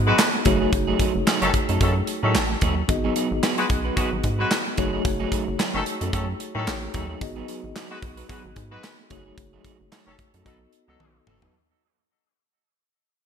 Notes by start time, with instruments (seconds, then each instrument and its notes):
Already playing: analog synth bass G#2, tine electric piano B3 D#4 F#4 G#4 D#5
0.07 clean electric guitar F#3 B3 D#4 B4, horn section G#3 F#4 B4
0.18 snare, clap, closed hi-hat
0.33 muted clean electric guitar stroke
0.45 analog synth bass F#1, clean electric guitar F#3 A3 D#4 G#4, tine electric piano A3 D#4 F#4 G#4 C#5, kick, closed hi-hat
0.61 clean electric guitar F#3 A3 D#4 G#4
0.73 analog synth bass F#1, kick, closed hi-hat
0.87 clean electric guitar F#3 A3 D#4 G#4
0.99 clean electric guitar F#3 A3 D#4 G#4, kick, closed hi-hat
1.15 analog synth bass F#1, muted clean electric guitar stroke
1.26 clean electric guitar F#3 A3 D#4 G#4, snare, clap, closed hi-hat
1.42 analog synth bass F#1, horn section D#3 C#4 A4, muted clean electric guitar stroke, closed hi-hat
1.54 muted clean electric guitar stroke, kick, closed hi-hat
1.69 analog synth bass F#2, clean electric guitar F#3 A3 D#4 A4, closed hi-hat
1.81 analog synth bass F#2, horn section D#3 C#4 A4, clean electric guitar F#3 A3 D#4 A4, kick, closed hi-hat
1.96 muted clean electric guitar stroke
2.07 muted clean electric guitar stroke, closed hi-hat
2.23 analog synth bass A2, horn section D#3 C#4 A4, clean electric guitar F#3 A3 D#4 G#4
2.35 analog synth bass A1, snare, clap, closed hi-hat
2.50 muted clean electric guitar stroke
2.61 analog synth bass D#2, clean electric guitar F#3 A3 D#4 G#4, kick, closed hi-hat
2.77 muted clean electric guitar stroke
2.88 analog synth bass G#1, tine electric piano B3 D#4 F#4 G#4 D#5, muted clean electric guitar stroke, kick, closed hi-hat
3.04 clean electric guitar F#3 B3 D#4 G#4
3.16 clean electric guitar F#3 B3 D#4 G#4, closed hi-hat
3.31 analog synth bass G#1, muted clean electric guitar stroke
3.43 clean electric guitar F#3 B3 D#4 G#4, snare, clap, closed hi-hat
3.58 horn section G#3 F#4 B4, muted clean electric guitar stroke, closed hi-hat
3.70 analog synth bass B1, muted clean electric guitar stroke, kick, closed hi-hat
3.85 clean electric guitar F#3 B3 D#4 B4
3.97 clean electric guitar F#3 B3 D#4 G#4, horn section G#3 F#4 B4, kick, closed hi-hat
4.12 analog synth bass G#1, muted clean electric guitar stroke
4.24 analog synth bass G#2, muted clean electric guitar stroke, kick, closed hi-hat
4.39 clean electric guitar F#3 B3 D#4 B4, horn section G#3 F#4 B4
4.51 snare, clap, closed hi-hat
4.66 muted clean electric guitar stroke
4.77 analog synth bass F#1, clean electric guitar F#3 A3 D#4 G#4, tine electric piano A3 D#4 F#4 G#4 C#5, kick, closed hi-hat
4.93 clean electric guitar F#3 A3 D#4 G#4
5.05 analog synth bass F#1, muted clean electric guitar stroke, kick, closed hi-hat
5.20 clean electric guitar F#3 A3 D#4 G#4
5.32 clean electric guitar F#3 A3 D#4 G#4, kick, closed hi-hat
5.47 analog synth bass F#1, muted clean electric guitar stroke
5.58 clean electric guitar F#3 A3 D#4 G#4, snare, clap, closed hi-hat
5.74 analog synth bass F#1, horn section D#3 C#4 A4, muted clean electric guitar stroke
5.86 muted clean electric guitar stroke, closed hi-hat
6.01 analog synth bass F#2, clean electric guitar F#3 A3 D#4 A4, closed hi-hat
6.13 analog synth bass F#2, horn section D#3 C#4 A4, clean electric guitar F#3 A3 D#4 A4, kick, closed hi-hat
6.28 muted clean electric guitar stroke
6.40 muted clean electric guitar stroke, closed hi-hat
6.55 analog synth bass A2, horn section D#3 C#4 A4, clean electric guitar F#3 A3 D#4 G#4
6.67 analog synth bass A1, tine electric piano A3 D#4 F#4 G#4 C#5, muted clean electric guitar stroke, snare, clap, closed hi-hat
6.82 muted clean electric guitar stroke
6.94 analog synth bass D#2, clean electric guitar F#3 A3 D#4 G#4, kick, closed hi-hat
7.09 clean electric guitar F#3 A3 D#4 G#4
7.20 analog synth bass G#1, tine electric piano B3 D#4 F#4 G#4 D#5, kick, closed hi-hat
7.36 clean electric guitar F#3 B3 D#4 G#4
7.48 clean electric guitar F#3 B3 D#4 G#4, closed hi-hat
7.63 analog synth bass G#1, muted clean electric guitar stroke
7.75 clean electric guitar F#3 B3 D#4 G#4, snare, clap, closed hi-hat
7.90 horn section G#3 F#4 B4, muted clean electric guitar stroke
8.02 analog synth bass B1, muted clean electric guitar stroke, kick, closed hi-hat
8.17 clean electric guitar F#3 B3 D#4 B4, closed hi-hat
8.29 clean electric guitar F#3 B3 D#4 G#4, horn section G#3 F#4 B4, kick, closed hi-hat
8.44 analog synth bass G#1, muted clean electric guitar stroke
8.56 analog synth bass G#2, muted clean electric guitar stroke, kick, closed hi-hat
8.71 clean electric guitar F#3 B3 D#4 B4, horn section G#3 F#4 B4
8.83 snare, clap, closed hi-hat
8.99 muted clean electric guitar stroke
9.10 analog synth bass F#1, clean electric guitar F#3 A3 D#4 G#4, tine electric piano A3 D#4 F#4 G#4 C#5, kick, closed hi-hat
9.26 clean electric guitar F#3 A3 D#4 G#4
9.38 analog synth bass F#1, muted clean electric guitar stroke, kick, closed hi-hat
9.53 clean electric guitar F#3 A3 D#4 G#4
9.65 clean electric guitar F#3 A3 D#4 G#4, kick, closed hi-hat
9.80 analog synth bass F#1, muted clean electric guitar stroke
9.92 clean electric guitar F#3 A3 D#4 G#4, snare, clap, closed hi-hat
10.07 analog synth bass F#1, horn section D#3 C#4 A4, muted clean electric guitar stroke
10.19 muted clean electric guitar stroke, kick, closed hi-hat
10.34 analog synth bass F#2, clean electric guitar F#3 A3 D#4 A4, closed hi-hat
10.45 analog synth bass B1, horn section F#3 D#4 A4, clean electric guitar F#3 B3 D#4 B4, tine electric piano B3 D#4 F#4 A4 D#5, kick, closed hi-hat
10.61 muted clean electric guitar stroke
10.73 muted clean electric guitar stroke, closed hi-hat
10.88 analog synth bass C#2, horn section F#3 D#4 A4, clean electric guitar F#3 B3 D#4 A4
11.00 analog synth bass B1, high tom
11.15 muted clean electric guitar stroke
11.27 analog synth bass F#1, clean electric guitar F#3 B3 D#4 A4, mid tom
11.42 clean electric guitar F#3 B3 D#4 A4, floor tom